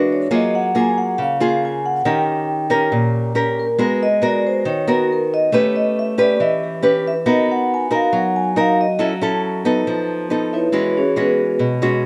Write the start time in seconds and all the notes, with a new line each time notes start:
Already playing: E3 G#3 D4 F#4 B4
0.12 C#5
0.31 F#3 A#3 F4 G#4 D#5
0.55 F#5
0.75 A#3 F4 G#4 G#5
0.98 F#5
1.18 C#3
1.22 F5
1.40 A#3 F4 G#4
1.65 G#5
1.86 F#5
2.05 D#3 C#4 G4 A#4 G5
2.70 C#4 G4 A#4
2.92 A#2
3.35 C#4 G4 A#4
3.59 A#4
3.79 G#3 B3 F#4 A#4 B4
4.03 D#5
4.22 B3 F#4 A#4 D5
4.47 C5
4.65 D#3 C#5
4.87 B3 F#4 A#4
5.13 A#4
5.34 D#5
5.52 A3 C#4 G4 B4 C#5
5.76 D#5
5.99 E5
6.18 C#4 G4 B4 D5
6.40 E3 D#5
6.64 G4
6.83 C#4 G4 B4
7.07 E5
7.26 B3 D#4 F#4 A#4 D#5
7.52 F#5
7.74 G#5
7.91 D#4 F#4 A#4
7.95 F5
8.13 F#3 F#5
8.36 G#5
8.56 D#4 F#4 A#4 F5
8.81 D#5
8.99 F#3 C#4 E4 A4 E5
9.21 C#4 E4 A4 A5
9.65 B3 D#4 A4
9.87 F3
10.30 B3 D#4 A4
10.53 E4 B4 C#5 E5
10.72 E3 G#3 C#4 F#4
10.97 C#4 F#4 G#4 C#5
11.16 G#3 C#4 F#4 B4
11.20 B3 F#4 G#4
11.59 B2
11.82 G#3 C#4 F#4